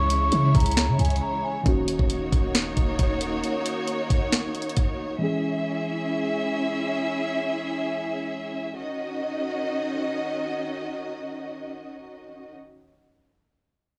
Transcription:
Already playing: 808-style bass C#2, string section C#3 G#3 E4 C#5, synth keys E3 G#3 C#4 G#4, vibraphone C#6
0.10 closed hi-hat
0.21 vibraphone C#6
0.32 808-style bass C#3, closed hi-hat
0.55 808-style bass C#2, vibraphone A#5, kick, closed hi-hat
0.60 closed hi-hat
0.66 closed hi-hat
0.71 closed hi-hat
0.77 snare, closed hi-hat
0.88 808-style bass C#3
0.99 808-style bass C#2, vibraphone G#5, closed hi-hat
1.05 closed hi-hat
1.10 closed hi-hat
1.16 closed hi-hat
1.22 vibraphone A#5
1.44 vibraphone G#5
1.63 808-style bass D#1, synth keys D#3 A#3 C#4, string section A#3 D#4 F#4 C#5, kick, closed hi-hat
1.68 synth keys F#4
1.88 closed hi-hat
1.99 808-style bass D#1, kick
2.10 closed hi-hat
2.32 808-style bass D#1, kick, closed hi-hat
2.55 snare, closed hi-hat
2.77 808-style bass D#1, kick, closed hi-hat
2.99 808-style bass D#1, kick, closed hi-hat
3.21 closed hi-hat
3.44 closed hi-hat
3.66 closed hi-hat
3.88 closed hi-hat
4.10 kick, closed hi-hat
4.33 snare, closed hi-hat
4.55 closed hi-hat
4.62 closed hi-hat
4.70 closed hi-hat
4.77 kick, closed hi-hat
5.19 synth keys E3 G#3 C#4, string section C#4 E4 G#4 E5
5.23 synth keys G#4
8.77 string section D#3 C#4 F#4 D#5

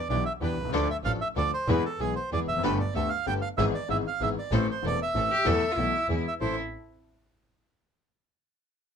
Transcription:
0.09 double bass B1, grand piano B1 B2 E3 B3 D4 G4, string section D4 E4 G4, bandoneon D5
0.26 bandoneon E5
0.41 double bass E2, grand piano E2 E3 B3 D4 G4, string section D4 E4 G4, bandoneon B4
0.57 grand piano B1, double bass C2
0.65 grand piano C2
0.69 grand piano C#2, double bass D2, string section D4 F4 A4
0.74 grand piano D2 D3 F3 A3 D4 A4, bandoneon D5
0.90 bandoneon E5
1.04 double bass A1, grand piano A1 A2 F3 A3 D4 A4, string section D4 F4 A4, bandoneon F5
1.21 bandoneon E5
1.36 double bass D2, grand piano D2 D3 F3 A3 D4 A4, string section D4 F4 A4, bandoneon D5
1.54 bandoneon C5
1.68 double bass E2, grand piano E2 E3 G#3 B3 G#4, string section B3 E4 G#4, bandoneon B4
1.85 bandoneon A4
1.99 double bass B1, grand piano B1 B2 E3 G#3 B3 G#4, string section B3 E4 G#4, bandoneon G#4
2.16 bandoneon C5
2.31 double bass E2, grand piano E2 E3 G#3 B3 G#4, string section B3 E4 G#4, bandoneon D5
2.48 double bass F1, bandoneon E5
2.52 grand piano E2
2.56 grand piano F2 F#2
2.63 grand piano G1 G2 D3 A3 B3 G4, double bass G1, string section B3 G4 A4, bandoneon B4
2.80 bandoneon D5
2.94 double bass D2, grand piano D2 D3 A3 B3 G4, string section B3 G4 A4, bandoneon E5
3.09 bandoneon F5
3.26 grand piano G1 G2 D3 A3 B3 G4, double bass G1, string section B3 G4 A4, bandoneon G5
3.42 bandoneon F5
3.58 grand piano G#1 G#2 E3 G#3 B3 G#4, double bass G#1, string section B3 E4 G#4, bandoneon E5
3.75 bandoneon D5
3.89 grand piano G#1 G#2 E3 G#3 B3 G#4, double bass G#1, string section B3 E4 G#4, bandoneon E5
4.07 bandoneon F5
4.21 double bass G#1, grand piano G#1 G#2 E3 G#3 B3 G#4, string section B3 E4 G#4, bandoneon E5
4.39 bandoneon D5
4.52 double bass A1, grand piano A1 A2 E3 A3 C4 A4, string section C4 E4 A4, bandoneon C5
4.71 bandoneon C5
4.82 grand piano E1 E2 E3 A3 C4 A4, double bass E1, string section C4 E4 A4
4.87 bandoneon D5
5.02 bandoneon E5
5.15 grand piano A1 A2 E3 A3 C4 A4, double bass A1, string section C4 E4 A4
5.31 cello G4
5.45 grand piano E2 E3 A3 B3 A4, double bass E2, string section B3 E4 A4, cello A4
5.71 cello F4
5.77 double bass B1, grand piano B1 B2 E3 A3 B3 A4, string section B3 E4 A4, cello E4
6.08 double bass E2, grand piano E2 E3 G#3 B3 G#4, string section B3 E4 G#4
6.28 bandoneon E5
6.40 double bass A1, grand piano A1 C4 E4 A4, string section C4 E4 A4, cello E4, bandoneon C5

